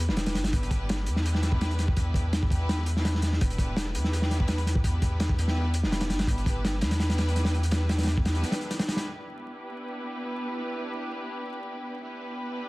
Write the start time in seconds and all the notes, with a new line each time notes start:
Already playing: E2
0.08 E1 B3 D4 E4 G4 B4, snare
0.17 snare, closed hi-hat
0.26 snare, closed hi-hat
0.35 G1, snare, closed hi-hat
0.44 snare, closed hi-hat
0.53 B3 D4 E4 G4 B4, kick, closed hi-hat
0.63 closed hi-hat
0.71 kick, closed hi-hat
0.89 snare, closed hi-hat
1.06 E2 B3 D4 E4 G4 B4, closed hi-hat
1.16 snare
1.26 closed hi-hat
1.35 snare
1.43 snare, closed hi-hat
1.52 kick
1.61 snare, closed hi-hat
1.71 closed hi-hat
1.79 snare, closed hi-hat
1.88 kick
1.97 B3 D4 E4 G4 B4, kick, closed hi-hat
2.14 kick, closed hi-hat
2.33 snare, closed hi-hat
2.43 kick
2.50 E2 B3 D4 E4 G4 B4, kick, closed hi-hat
2.69 snare, closed hi-hat
2.86 closed hi-hat
2.96 B3 D4 E4 G4 B4, snare
3.05 snare, closed hi-hat
3.15 snare
3.22 snare, closed hi-hat
3.33 snare
3.41 E1 B3 D4 E4 G4 B4, kick, closed hi-hat
3.50 closed hi-hat
3.58 kick, closed hi-hat
3.77 snare, closed hi-hat
3.95 E2 B3 D4 E4 G4 B4, closed hi-hat
4.04 snare
4.13 closed hi-hat
4.22 snare
4.31 snare, closed hi-hat
4.40 kick
4.48 snare, closed hi-hat
4.58 closed hi-hat
4.66 snare, closed hi-hat
4.75 kick
4.84 B3 D4 E4 G4 B4, kick, closed hi-hat
5.02 kick, closed hi-hat
5.20 snare, closed hi-hat
5.29 kick
5.39 E2 B3 D4 E4 G4 B4, closed hi-hat
5.48 snare
5.74 closed hi-hat
5.83 E1 B3 D4 E4 G4 B4, snare
5.92 snare, closed hi-hat
6.01 snare, closed hi-hat
6.10 G1, snare, closed hi-hat
6.19 snare, closed hi-hat
6.27 B3 D4 E4 G4 B4, kick, closed hi-hat
6.38 closed hi-hat
6.46 kick, closed hi-hat
6.65 snare, closed hi-hat
6.81 E2 B3 D4 E4 G4 B4, snare, closed hi-hat
6.91 snare, closed hi-hat
7.00 snare, closed hi-hat
7.10 snare, closed hi-hat
7.18 snare, closed hi-hat
7.28 closed hi-hat
7.36 snare, closed hi-hat
7.45 snare, closed hi-hat
7.54 closed hi-hat
7.63 closed hi-hat
7.71 B3 D4 E4 G4 B4, snare, closed hi-hat
7.89 snare, closed hi-hat
7.98 snare, closed hi-hat
8.03 snare, closed hi-hat
8.07 snare, closed hi-hat
8.18 kick
8.25 E2 B3 D4 E4 G4 B4, snare, closed hi-hat
8.35 closed hi-hat
8.43 snare, closed hi-hat
8.52 snare, closed hi-hat
8.61 closed hi-hat
8.71 snare, closed hi-hat
8.79 snare, closed hi-hat
8.88 B3 D4 E4 G4 B4, snare, closed hi-hat
8.96 snare, closed hi-hat
9.16 B3 D4 E4 G4 B4
12.03 B3 D4 E4 G4 B4